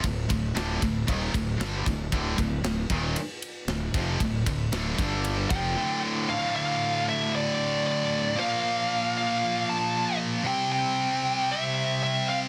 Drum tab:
RD |xxxxxxxx|xxxxxxxx|xxxxxx--|--------|
SD |--o---o-|--o---o-|--o-----|--------|
BD |oo-ooo-o|oo-o---o|oo-o-o--|--------|

RD |--------|--------|
SD |--------|--------|
BD |--------|--------|